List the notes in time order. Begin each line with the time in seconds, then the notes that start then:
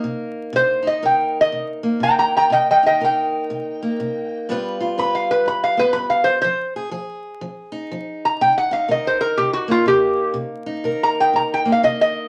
Already playing: A#3 D#4 A#4
0.04 C3
0.53 C3 C5
0.82 D#4
0.87 D#5
1.02 C3 A#4 G5
1.41 D#5
1.52 C3
1.83 A#3
2.00 C3 G5 A#5
2.19 G5 A#5
2.37 G5 A#5
2.50 C3 D#5 G5
2.71 D#5 G5
2.83 D#4 D#5 G5
3.00 C3 A#4
3.05 G5
3.50 C3
3.82 A#3
4.00 C3
4.49 G2 G3 B3 F4 B4
4.80 F4
4.98 G2 B4 B5
5.15 F5
5.31 B4
5.46 G2 B5
5.64 F5
5.77 B3 B4
5.93 G2 B5
6.10 F5
6.24 C5
6.42 F3 C5
6.76 G#4
6.91 F3 G#4
7.41 F3
7.72 D#4
7.91 F3
8.25 A#5
8.41 C3 G5
8.58 F#5
8.71 D#4 F5
8.88 C3 A#4 D#5
9.07 C5
9.21 A#4
9.37 C3 G4
9.53 F#4
9.68 A#3 F4
9.86 C3 G4
10.34 C3
10.66 D#4
10.84 C3 A#4
11.03 A#5
11.20 G5
11.33 C3 A#5
11.54 G5
11.65 A#3
11.72 F5
11.83 C3 D#5
12.01 D#5